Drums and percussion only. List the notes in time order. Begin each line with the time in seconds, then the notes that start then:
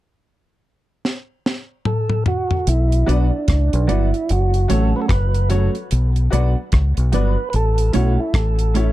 1.05 snare
1.46 snare
1.85 mid tom
2.10 mid tom
2.26 floor tom
2.51 floor tom
2.67 closed hi-hat
2.92 closed hi-hat
3.09 closed hi-hat
3.48 kick, cross-stick, closed hi-hat
3.73 closed hi-hat
3.89 closed hi-hat
4.14 closed hi-hat
4.29 closed hi-hat
4.54 closed hi-hat
4.70 closed hi-hat
5.09 kick, cross-stick, closed hi-hat
5.34 closed hi-hat
5.50 closed hi-hat
5.75 closed hi-hat
5.91 closed hi-hat
6.16 closed hi-hat
6.33 closed hi-hat
6.72 kick, cross-stick, closed hi-hat
6.97 closed hi-hat
7.13 closed hi-hat
7.53 closed hi-hat
7.78 closed hi-hat
7.93 closed hi-hat
8.34 kick, cross-stick, closed hi-hat
8.59 closed hi-hat
8.75 closed hi-hat